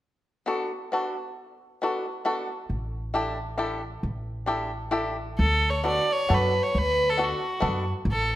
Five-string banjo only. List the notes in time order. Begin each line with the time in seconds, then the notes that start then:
0.46 B3 D4 F#4 A4
0.92 B3 D4 F#4 A4
1.82 B3 D4 F#4 A4
2.25 B3 D4 F#4 A4
3.14 D4 E4 G4 A4
3.58 D4 E4 G4 A4
4.46 D4 E4 G4 A4
4.91 D4 E4 G4 A4
5.84 B3 D4 F#4 A4
6.29 B3 D4 F#4 A4
7.18 B3 D4 F#4 A4
7.60 B3 D4 F#4 A4